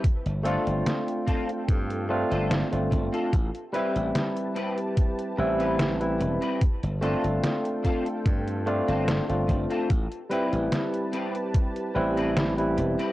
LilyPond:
<<
  \new Staff \with { instrumentName = "Analog synth pad" } { \time 4/4 \key a \minor \tempo 4 = 73 <f' a' g''>1 | <g' b' a''>1 | <f' a' g''>1 | <g' b' a''>1 | }
  \new Staff \with { instrumentName = "Clean electric guitar" } { \time 4/4 \key a \minor r8 <c' f' a'>16 r8. <c' f' a'>16 r4 <c' f' a'>16 r8. <c' f' a'>16 | r8 <c' g' b'>16 r8. <c' g' b'>16 r4 <c' g' b'>16 r8. <c' g' b'>16 | r8 <c' f' a'>16 r8. <c' f' a'>16 r4 <c' f' a'>16 r8. <c' f' a'>16 | r8 <c' g' b'>16 r8. <c' g' b'>16 r4 <c' g' b'>16 r8. <c' g' b'>16 | }
  \new Staff \with { instrumentName = "Tine electric piano" } { \time 4/4 \key a \minor r8 <a c' d' f'>2 <a c' d' f'>8. <a c' d' f'>8. | r8 <g c' e' b'>2 <g c' e' b'>8. <g c' e' b'>8. | r8 <a c' d' f'>2 <a c' d' f'>8. <a c' d' f'>8. | r8 <g c' e' b'>2 <g c' e' b'>8. <g c' e' b'>8. | }
  \new Staff \with { instrumentName = "Slap bass" } { \clef bass \time 4/4 \key a \minor r16 g,,8 g,,16 r4 g,8. g,,8 g,,16 g,,16 r16 | a,,16 r8 a,,16 r4. a,,4 e,,16 r16 | r16 g,,8 g,,16 r4 g,8. g,,8 g,,16 g,,16 r16 | a,,16 r8 a,,16 r4. a,,4 e,,16 r16 | }
  \new DrumStaff \with { instrumentName = "Drums" } \drummode { \time 4/4 <hh bd>16 hh16 hh16 hh16 <hh sn>16 hh16 <hh bd>16 hh16 <hh bd>16 hh8 hh16 <hh sn>16 hh16 <hh bd>16 hh16 | <hh bd>16 hh16 hh16 hh16 <hh sn>16 hh16 hh16 hh16 <hh bd>16 hh8 hh16 <hh sn>16 hh16 hh16 hh16 | <hh bd>16 hh16 hh16 hh16 <hh sn>16 hh16 <hh bd>16 hh16 <hh bd>16 hh16 hh16 hh16 <hh sn>16 hh16 <hh bd>16 hh16 | <hh bd>16 hh16 hh16 hh16 <hh sn>16 hh16 hh16 hh16 <hh bd>16 hh8 hh16 <hh sn>16 hh16 hh16 hh16 | }
>>